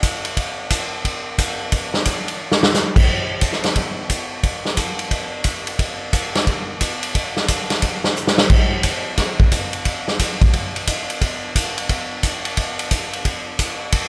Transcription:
0.03 kick soft
0.03 hi-hat pedal medium
0.03 ride medium
0.25 ride soft
0.37 kick soft
0.37 ride medium
0.70 kick soft
0.70 hi-hat pedal medium
0.70 ride medium
1.05 kick soft
1.05 ride medium
1.38 kick soft
1.38 hi-hat pedal medium
1.38 ride medium
1.72 kick soft
1.72 ride medium
1.94 snare soft
2.05 kick soft
2.05 hi-hat pedal medium
2.05 ride medium
2.28 ride soft
2.52 snare medium
2.63 snare medium
2.74 snare medium
2.74 hi-hat pedal medium
2.96 kick medium
2.96 crash medium
3.08 kick soft
3.41 kick soft
3.41 hi-hat pedal medium
3.41 ride medium
3.53 snare soft
3.64 snare soft
3.64 ride soft
3.76 kick soft
3.76 ride medium
4.10 kick soft
4.10 hi-hat pedal medium
4.10 ride medium
4.43 kick soft
4.43 ride medium
4.65 snare soft
4.77 kick soft
4.77 hi-hat pedal medium
4.77 ride medium
4.99 ride soft
5.11 kick soft
5.11 ride medium
5.44 kick soft
5.44 hi-hat pedal soft
5.44 ride medium
5.67 ride soft
5.79 kick soft
5.79 ride medium
6.13 kick soft
6.13 hi-hat pedal medium
6.13 ride medium
6.35 snare soft
6.35 ride soft
6.47 kick soft
6.47 ride medium
6.81 kick soft
6.81 hi-hat pedal medium
6.81 ride medium
7.03 ride soft
7.15 kick soft
7.15 ride medium
7.37 snare soft
7.48 kick soft
7.48 hi-hat pedal medium
7.48 ride medium
7.70 snare soft
7.70 ride soft
7.82 kick soft
7.82 ride medium
8.04 snare soft
8.16 hi-hat pedal medium
8.27 snare medium
8.38 snare medium
8.50 kick medium
8.50 crash medium
8.83 kick soft
8.83 hi-hat pedal medium
8.83 ride medium
9.17 kick soft
9.17 snare soft
9.17 ride medium
9.40 kick medium
9.52 kick soft
9.52 hi-hat pedal medium
9.52 ride medium
9.73 ride soft
9.85 kick soft
9.85 ride medium
10.08 snare soft
10.19 kick soft
10.19 hi-hat pedal medium
10.19 ride medium
10.42 kick medium
10.42 ride soft
10.53 kick soft
10.53 ride medium
10.76 ride soft
10.87 kick soft
10.87 hi-hat pedal medium
10.87 ride medium
11.10 ride soft
11.21 kick soft
11.21 ride medium
11.56 kick soft
11.56 hi-hat pedal medium
11.56 ride medium
11.78 ride soft
11.89 kick soft
11.89 ride medium
12.23 kick soft
12.23 hi-hat pedal medium
12.23 ride medium
12.45 ride soft
12.57 kick soft
12.57 ride medium
12.79 ride medium
12.91 kick soft
12.91 hi-hat pedal medium
12.91 ride medium
13.13 ride soft
13.25 kick soft
13.25 ride medium
13.59 kick soft
13.59 hi-hat pedal medium
13.59 ride medium
13.92 kick soft
13.92 ride medium

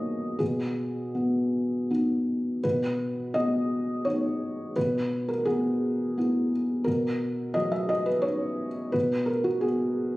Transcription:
0.00 0.36 B2 medium
0.00 0.43 A#3 soft
0.00 0.36 D#4 soft
0.00 0.43 B4 medium
0.00 0.43 C#5 medium
0.00 0.43 D#5 medium
0.39 2.60 B2 soft
0.39 1.90 G#4 medium
1.15 1.89 B3 soft
1.90 2.60 B3 soft
1.90 2.60 D#4 soft
2.63 4.72 B2 soft
2.63 3.35 B4 medium
3.34 4.05 B3 soft
3.34 4.05 D#5 medium
4.05 4.72 B3 soft
4.05 4.72 D#4 soft
4.05 4.75 C#5 medium
4.76 6.84 B2 soft
4.76 5.28 B4 medium
5.29 5.46 A#4 medium
5.45 6.16 B3 soft
5.45 6.52 G#4 medium
6.18 6.83 B3 soft
6.18 6.84 E4 soft
6.84 8.91 B2 soft
6.84 7.55 A#4 medium
7.54 8.67 F#3 soft
7.54 7.72 D#5 medium
7.72 7.89 E5 medium
7.89 8.07 D#5 medium
8.06 8.24 B4 medium
8.22 8.90 C#4 soft
8.22 8.90 D#4 soft
8.22 8.93 C#5 medium
8.92 10.17 B2 medium
8.92 9.28 B4 medium
9.26 9.45 A#4 medium
9.44 9.63 F#4 medium
9.61 10.17 B3 soft
9.61 10.17 G#4 medium

